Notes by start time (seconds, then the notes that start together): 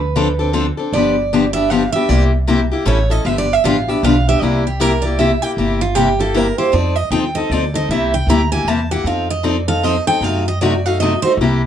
Already playing: D2 B4
0.16 D3 F3 C4 D4 A4
0.39 C4 D4 A4
0.53 D3 F3 C4 D4 A4
0.77 C4 D4 A4
0.93 G1 D3 F3 B3 D4 G4 D5
1.33 D3 F3 B3 D4 G4
1.53 B3 D4 G4 E5
1.70 D3 F3 B3 D4 G4 F5
1.92 B3 D4 G4 E5
2.09 C2 C3 G3 A#3 E4 G4 D5
2.47 C3 G3 A#3 E4 G4
2.72 A#3 E4 G4
2.85 A1 E3 G3 C#4 E4 A4 C#5
3.10 C#4 E4 A4 D#5
3.25 G1 D3 F3 B3 D4 G4 E5
3.38 D5
3.53 E5
3.64 A1 D3 F3 B3 D4 G4 F5
3.88 B3 D4 G4 E5
4.03 B1 D3 F3 B3 D4 G4 F5
4.28 B3 D4 G4 E5
4.42 C2 C3 G3 A#3 E4 G4 D5
4.67 G4
4.80 C3 G3 A#3 E4 G4 A#4
5.02 E4 G4 D5
5.06 A#3
5.19 C3 G3 A#3 E4 G4 E5
5.42 A#3 E4 G4 G5
5.57 G1 C3 G3 A#3 E4 G4
5.81 F4
5.95 C3 G3 A#3 E4 G4
6.19 A#3 E4 G4 A4
6.34 C3 G3 A#3 E4 G4 A#4
6.58 A#3 E4 G4 C5
6.72 F2 F3 C4 D#4 A4 D5
6.96 D#5
7.11 D#2 F3 C4 D#4 A4 G5
7.35 C4 D#4 A4 D#5
7.50 D2 F3 C4 D#4 A4 D5
7.74 C4 D#4 A4 D#5
7.89 C2 C3 G3 A#3 E4 G4 E5
8.14 G5
8.27 D2 C3 G3 A#3 E4 G4 A#5
8.52 A#3 E4 G4 G#5
8.65 E2 C3 G3 A#3 E4 G4 A5
8.91 A#3 E4 G4 F#5
9.04 F2 F3 C4 D#4 A4 F5
9.30 D#5
9.43 F3 C4 D#4 A4 D5
9.68 C4 D#4 A4 F5
9.83 F3 C4 D#4 A4 D#5
10.07 C4 D#4 A4 G5
10.21 F#2 C3 F#3 A3 D#4 F#4 F5
10.48 D#5
10.61 C3 F#3 A3 D#4 F#4 D5
10.86 A3 D#4 F#4 F5
11.00 C3 F#3 A3 D#4 F#4 D#5
11.22 A3 D#4 F#4 C5
11.37 C2 C3 G3 A#3 E4
11.41 G4